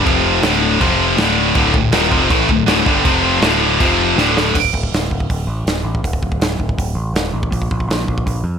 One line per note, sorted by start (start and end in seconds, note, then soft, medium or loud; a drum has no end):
0.05 0.41 F1 medium
0.05 0.43 F2 medium
0.05 0.43 C3 loud
0.05 0.43 F3 loud
0.05 kick loud
0.05 china medium
0.42 0.78 D1 medium
0.42 0.80 D2 medium
0.42 0.81 A2 loud
0.42 0.81 D3 loud
0.42 snare loud
0.42 china medium
0.80 1.15 F1 medium
0.80 1.17 F2 medium
0.80 1.17 C3 loud
0.80 1.18 F3 medium
0.80 kick loud
0.80 china medium
1.17 1.52 D1 loud
1.17 1.54 D2 medium
1.17 1.54 A2 loud
1.17 1.54 D3 loud
1.17 snare loud
1.17 china medium
1.55 1.73 D1 medium
1.55 1.72 D2 medium
1.55 1.72 A2 loud
1.55 1.74 D3 loud
1.55 kick loud
1.55 china medium
1.73 1.91 D1 medium
1.73 1.89 D2 medium
1.73 1.89 A2 medium
1.73 kick loud
1.91 2.09 D#1 loud
1.91 2.11 D#2 loud
1.91 2.11 A#2 loud
1.91 2.11 D#3 loud
1.91 snare loud
1.91 china medium
2.11 2.29 F1 loud
2.11 2.29 F2 loud
2.11 2.30 C3 loud
2.11 2.30 F3 loud
2.11 kick medium
2.30 2.47 A1 loud
2.30 2.48 A2 medium
2.30 2.48 E3 loud
2.30 2.48 A3 loud
2.30 kick loud
2.30 china medium
2.49 2.66 D1 medium
2.49 2.64 D2 medium
2.49 2.64 A2 medium
2.49 kick loud
2.67 2.84 D1 loud
2.67 2.85 D2 medium
2.67 2.86 A2 loud
2.67 2.86 D3 loud
2.67 snare loud
2.67 china medium
2.86 3.03 G1 loud
2.86 3.05 G2 loud
2.86 3.05 D3 loud
2.86 3.05 G3 medium
2.86 kick loud
3.05 3.39 F1 loud
3.05 3.42 F2 loud
3.05 3.42 C3 medium
3.05 3.42 F3 loud
3.05 kick loud
3.05 china medium
3.42 3.77 D1 loud
3.42 3.79 D2 medium
3.42 3.79 A2 loud
3.42 3.79 D3 loud
3.42 snare loud
3.42 china medium
3.80 4.14 F1 medium
3.80 4.17 F2 medium
3.80 4.17 C3 loud
3.80 4.17 F3 loud
3.80 kick loud
3.80 china medium
4.16 4.54 D1 medium
4.16 4.54 D2 loud
4.16 4.54 A2 loud
4.16 4.54 D3 medium
4.16 snare medium
4.37 snare medium
4.55 4.71 D1 medium
4.55 kick loud
4.55 crash loud
4.65 kick medium
4.73 4.89 D1 medium
4.73 kick medium
4.83 kick medium
4.92 5.08 D1 medium
4.92 snare loud
4.92 open hi-hat medium
5.10 5.26 D1 medium
5.10 kick medium
5.20 kick medium
5.30 5.45 D1 medium
5.30 kick loud
5.30 open hi-hat medium
5.47 5.63 A1 medium
5.65 5.81 D1 medium
5.65 snare medium
5.65 open hi-hat medium
5.84 6.00 A1 medium
5.95 kick medium
6.04 6.20 D1 medium
6.04 kick medium
6.04 open hi-hat medium
6.13 kick medium
6.22 6.38 D1 medium
6.22 kick medium
6.32 kick medium
6.40 6.56 D1 medium
6.40 snare loud
6.40 open hi-hat medium
6.59 6.75 D1 medium
6.59 kick medium
6.69 kick medium
6.78 6.94 D1 medium
6.78 kick loud
6.78 open hi-hat medium
6.95 7.12 A1 medium
7.14 7.31 D1 medium
7.14 snare loud
7.14 open hi-hat medium
7.33 7.50 A1 medium
7.43 kick medium
7.52 7.68 A#1 loud
7.52 kick loud
7.52 open hi-hat medium
7.62 kick medium
7.71 7.87 A#1 medium
7.71 kick loud
7.80 kick medium
7.88 8.05 A#1 medium
7.88 snare loud
7.88 open hi-hat medium
8.07 8.24 A#1 medium
8.07 kick medium
8.18 kick medium
8.26 8.43 A#1 medium
8.26 kick loud
8.26 open hi-hat medium
8.44 8.59 F2 medium